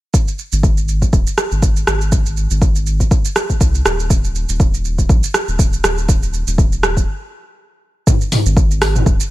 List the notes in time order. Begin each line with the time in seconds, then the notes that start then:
0.14 kick, shaker
0.28 shaker
0.39 shaker
0.52 G#1, shaker
0.63 kick, shaker
0.77 shaker
0.88 shaker
1.02 kick, shaker
1.13 D#1, kick, shaker
1.27 shaker
1.38 cross-stick, shaker
1.51 G#1, shaker
1.62 kick, shaker
1.76 shaker
1.87 G#1, cross-stick, shaker
2.01 shaker
2.12 kick, shaker
2.26 shaker
2.37 shaker
2.51 G#1, shaker
2.62 kick, shaker
2.76 shaker
2.86 shaker
3.00 kick, shaker
3.11 kick, shaker
3.25 shaker
3.36 cross-stick, shaker
3.50 kick, shaker
3.61 C2, kick, shaker
3.75 shaker
3.86 D#1, cross-stick, shaker
4.00 shaker
4.10 kick, shaker
4.24 shaker
4.35 shaker
4.49 D#1, shaker
4.60 kick, shaker
4.74 shaker
4.85 shaker
4.98 kick, shaker
5.09 A#1, kick, shaker
5.24 shaker
5.34 cross-stick, shaker
5.48 D#1, shaker
5.59 kick, shaker
5.73 shaker
5.84 D#1, cross-stick, shaker
5.98 shaker
6.09 kick, shaker
6.23 shaker
6.34 shaker
6.47 D#1, shaker
6.58 kick, shaker
6.72 shaker
6.83 cross-stick, shaker
6.97 kick, shaker
8.07 kick, mid tom, shaker
8.21 shaker
8.32 mid tom, open hi-hat, shaker
8.46 G#1, shaker
8.57 kick, shaker
8.71 shaker
8.82 cross-stick, open hi-hat, shaker
8.95 mid tom, shaker
9.06 D#1, kick, shaker
9.20 shaker